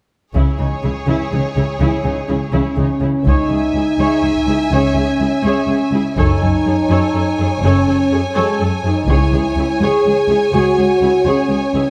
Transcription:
0.34 C#2 C#3 E4 G#4 C#5, taiko
0.59 C#2 C#3 D#4
0.83 C#2 C#3 E4
1.07 C#2 C#3 E4
1.32 C#2 C#3 D#4
1.56 C#2 C#3 E4
1.80 C#2 C#3 E4
2.04 C#2 C#3 D#4
2.29 C#2 C#3 E4
2.53 C#2 C#3 C#4 E4
2.77 C#2 C#3 D#4
3.01 C#2 C#3 E4
3.25 C#2 D#4 G#4 C#5 E5 G#5, taiko
3.50 C#2 G#4
3.74 C#2 E4 G#4
3.98 C#2 G#4 C#5
4.23 C#2 G#4
4.35 taiko
4.48 C#2 E4 G#4
4.71 C#2 C#4 G#4 C#5
4.96 C#2 G#4
5.19 C#2 E4 G#4
5.44 C#2 C#4 G#4 C#5
5.68 C#2 G#4
5.91 C#2 E4 G#4
6.16 F#1 F#2 D#4 A4 C#5 G#5, taiko
6.42 F#2 A4
6.66 F#2 G#4 A4
6.90 F#2 A4 C#5
7.15 F#2 A4
7.39 F#2 G#4 A4
7.63 F#1 F#2 C#4 A4 C#5
7.88 F#2 A4
8.12 F#2 G#4 A4
8.35 F#2 G#3 A4 C#5
8.61 F#2 A4
8.84 F#2 D#4 G#4 A4
9.08 C#2 E4 G#4 C#5 G#5, taiko
9.32 C#2 G#4
9.56 C#2 E4 G#4
9.81 C#2 G#4 C#5
10.06 C#2 G#4
10.28 C#2 E4 G#4
10.53 C#2 F#4 G#4 C#5
10.78 C#2 G#4
11.01 C#2 E4 G#4
11.26 C#2 C#4 G#4 C#5
11.49 C#2 G#4
11.75 C#2 E4 G#4

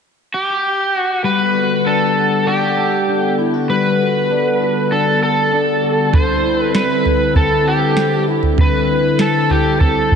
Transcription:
0.34 G4
0.97 F#4
1.24 D3 G3 B3 A4 B4 F#5
1.54 F#4
1.85 D4 A4
2.47 D4 G4
2.77 A4
3.08 D4
3.38 E4
3.54 F#4
3.69 G3 B4
4.00 F#4
4.31 D4
4.61 F#4
4.91 D4 A4
5.22 A4
5.52 D4
5.83 F#4
6.13 D3 C4 E4 C5, kick, floor tom
6.44 E4
6.59 B4
6.74 C4 B4, snare
7.05 E4, floor tom
7.35 C4 A4, kick, floor tom
7.66 G4 A4
7.97 C4, snare
8.28 E4
8.43 floor tom
8.58 D3 B4, kick, floor tom
8.89 E4
9.19 C4 A4, snare
9.50 E4 G4, floor tom
9.80 C4 A4, kick, floor tom
10.11 A4, kick

